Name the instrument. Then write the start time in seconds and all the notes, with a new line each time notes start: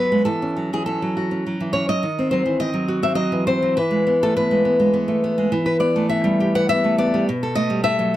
nylon-string guitar
Already playing: F#3 G#3 B3 G#4 B4
0.12 G#3
0.25 E3 A4
0.42 C#4
0.57 F#3
0.73 E3 G#4
0.86 C#4 A4
1.02 F#3
1.17 F#4
1.31 C#4
1.47 F#3
1.60 E3
1.73 C#4 C#5
1.89 F#3 D#5
2.03 D#3
2.19 C4
2.31 F#3 C5
2.46 E3
2.60 C4 D#5
2.74 F#3
2.88 F#4
3.03 C4 E5
3.15 F#3 D#5
3.32 E3
3.47 C4 C5
3.62 F#3
3.77 E3 B4
3.91 G#3
4.07 B3
4.23 A3 A4
4.37 B3 B4
4.51 G#3
4.65 B3
4.80 G#3
4.94 B3
5.08 A3
5.24 B3
5.38 G#3
5.52 E3
5.66 B4
5.80 B3 D5
5.96 A3
6.09 B3 E5
6.24 G3
6.40 G4
6.55 B4 F#5
6.69 B3 E5
6.84 A3
6.98 B3 D5
7.14 G3
7.29 B2
7.43 A4
7.55 A3 D#5
7.70 G3
7.84 A3 E5
7.99 F#3